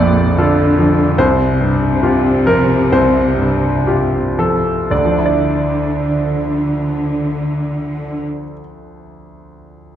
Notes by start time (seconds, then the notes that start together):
Already playing: A#1 F2 A#2 F3 F4 A4 D5 E5 F5
0.37 D3 F4 A4
0.79 F3
1.17 C2 C3 C5
1.61 G2
2.03 F4 G4
2.46 F3 A#4
2.92 C2 C5
3.38 G2
3.87 F4 G4
4.38 F3 A4
4.90 D2 D3 D5
4.98 D3
5.05 F3
5.12 D4
5.18 E4
5.26 D5